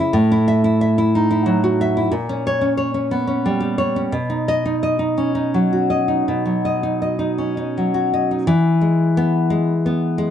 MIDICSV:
0, 0, Header, 1, 2, 480
1, 0, Start_track
1, 0, Key_signature, 4, "major"
1, 0, Tempo, 653595
1, 113, Time_signature, 6, 3, 24, 8
1, 2515, Tempo, 684932
1, 3475, Tempo, 705882
1, 3955, Tempo, 750939
1, 5875, Tempo, 678733
1, 7148, End_track
2, 0, Start_track
2, 0, Title_t, "Nylon-string guitar"
2, 0, Program_c, 0, 24
2, 0, Note_on_c, 0, 49, 69
2, 0, Note_on_c, 0, 64, 62
2, 0, Note_on_c, 0, 76, 65
2, 91, Note_off_c, 0, 49, 0
2, 97, Note_on_c, 0, 45, 77
2, 114, Note_off_c, 0, 64, 0
2, 117, Note_off_c, 0, 76, 0
2, 232, Note_on_c, 0, 64, 59
2, 351, Note_on_c, 0, 76, 71
2, 463, Note_off_c, 0, 64, 0
2, 471, Note_on_c, 0, 64, 57
2, 549, Note_off_c, 0, 76, 0
2, 596, Note_on_c, 0, 76, 59
2, 711, Note_off_c, 0, 64, 0
2, 720, Note_on_c, 0, 64, 60
2, 846, Note_on_c, 0, 63, 54
2, 951, Note_off_c, 0, 64, 0
2, 959, Note_on_c, 0, 64, 58
2, 1071, Note_on_c, 0, 54, 54
2, 1202, Note_on_c, 0, 66, 55
2, 1317, Note_off_c, 0, 76, 0
2, 1329, Note_on_c, 0, 76, 64
2, 1437, Note_off_c, 0, 64, 0
2, 1446, Note_on_c, 0, 64, 54
2, 1519, Note_off_c, 0, 45, 0
2, 1550, Note_off_c, 0, 54, 0
2, 1553, Note_on_c, 0, 46, 72
2, 1558, Note_off_c, 0, 66, 0
2, 1559, Note_off_c, 0, 63, 0
2, 1560, Note_off_c, 0, 64, 0
2, 1561, Note_off_c, 0, 76, 0
2, 1684, Note_on_c, 0, 61, 57
2, 1812, Note_on_c, 0, 73, 67
2, 1911, Note_off_c, 0, 61, 0
2, 1920, Note_on_c, 0, 61, 53
2, 1992, Note_off_c, 0, 73, 0
2, 2037, Note_on_c, 0, 73, 53
2, 2152, Note_off_c, 0, 61, 0
2, 2161, Note_on_c, 0, 61, 49
2, 2286, Note_on_c, 0, 59, 47
2, 2396, Note_off_c, 0, 61, 0
2, 2405, Note_on_c, 0, 61, 53
2, 2537, Note_on_c, 0, 55, 50
2, 2641, Note_on_c, 0, 67, 51
2, 2756, Note_off_c, 0, 73, 0
2, 2765, Note_on_c, 0, 73, 56
2, 2884, Note_off_c, 0, 61, 0
2, 2892, Note_on_c, 0, 61, 52
2, 2962, Note_off_c, 0, 46, 0
2, 2996, Note_off_c, 0, 67, 0
2, 2998, Note_off_c, 0, 73, 0
2, 2999, Note_off_c, 0, 59, 0
2, 3002, Note_off_c, 0, 55, 0
2, 3002, Note_off_c, 0, 61, 0
2, 3005, Note_on_c, 0, 47, 62
2, 3126, Note_on_c, 0, 63, 51
2, 3256, Note_on_c, 0, 75, 67
2, 3369, Note_off_c, 0, 63, 0
2, 3377, Note_on_c, 0, 63, 52
2, 3439, Note_off_c, 0, 75, 0
2, 3498, Note_on_c, 0, 75, 54
2, 3600, Note_off_c, 0, 63, 0
2, 3608, Note_on_c, 0, 63, 48
2, 3735, Note_on_c, 0, 61, 39
2, 3844, Note_off_c, 0, 63, 0
2, 3853, Note_on_c, 0, 63, 44
2, 3982, Note_on_c, 0, 54, 44
2, 4100, Note_on_c, 0, 66, 45
2, 4202, Note_off_c, 0, 75, 0
2, 4211, Note_on_c, 0, 75, 47
2, 4319, Note_off_c, 0, 63, 0
2, 4326, Note_on_c, 0, 63, 44
2, 4416, Note_off_c, 0, 47, 0
2, 4446, Note_off_c, 0, 61, 0
2, 4454, Note_on_c, 0, 47, 55
2, 4558, Note_off_c, 0, 54, 0
2, 4566, Note_on_c, 0, 54, 38
2, 4683, Note_off_c, 0, 75, 0
2, 4690, Note_on_c, 0, 75, 40
2, 4799, Note_off_c, 0, 63, 0
2, 4806, Note_on_c, 0, 63, 44
2, 4815, Note_off_c, 0, 66, 0
2, 4917, Note_off_c, 0, 75, 0
2, 4925, Note_on_c, 0, 75, 45
2, 5027, Note_off_c, 0, 63, 0
2, 5035, Note_on_c, 0, 63, 40
2, 5158, Note_on_c, 0, 61, 32
2, 5271, Note_off_c, 0, 63, 0
2, 5279, Note_on_c, 0, 63, 40
2, 5286, Note_off_c, 0, 54, 0
2, 5409, Note_on_c, 0, 54, 39
2, 5516, Note_on_c, 0, 66, 45
2, 5632, Note_off_c, 0, 75, 0
2, 5639, Note_on_c, 0, 75, 46
2, 5744, Note_off_c, 0, 63, 0
2, 5752, Note_on_c, 0, 63, 43
2, 5851, Note_off_c, 0, 54, 0
2, 5854, Note_on_c, 0, 52, 74
2, 5859, Note_off_c, 0, 47, 0
2, 5870, Note_off_c, 0, 63, 0
2, 5872, Note_off_c, 0, 66, 0
2, 5873, Note_off_c, 0, 61, 0
2, 5873, Note_off_c, 0, 75, 0
2, 6094, Note_on_c, 0, 56, 45
2, 6347, Note_on_c, 0, 59, 70
2, 6573, Note_off_c, 0, 56, 0
2, 6581, Note_on_c, 0, 56, 54
2, 6737, Note_off_c, 0, 59, 0
2, 6832, Note_on_c, 0, 59, 54
2, 7053, Note_off_c, 0, 56, 0
2, 7061, Note_on_c, 0, 56, 65
2, 7148, Note_off_c, 0, 52, 0
2, 7148, Note_off_c, 0, 56, 0
2, 7148, Note_off_c, 0, 59, 0
2, 7148, End_track
0, 0, End_of_file